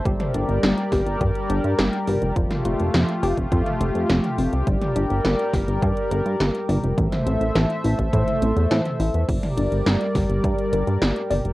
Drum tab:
CC |----------------|----------------|----------------|----------------|
HH |xxxxxxoxxxxxxxox|xxxxxxoxxxxxxxox|xxxxxxoxxxxxxxox|xxxxxxoxxxxxxxox|
SD |----o-o-----o---|-o--o-------o---|----o-o-----o---|-o--o-------o---|
T2 |-o------------o-|-o-------o---o--|-o------------o-|-o-------o---o--|
BD |o-----o-o-------|o------oo-------|o-----o-o-------|o------oo-------|

CC |x---------------|
HH |xxxxxxoxxxxxxxox|
SD |----o-o-----o---|
T2 |-o------------o-|
BD |o-----o-o-------|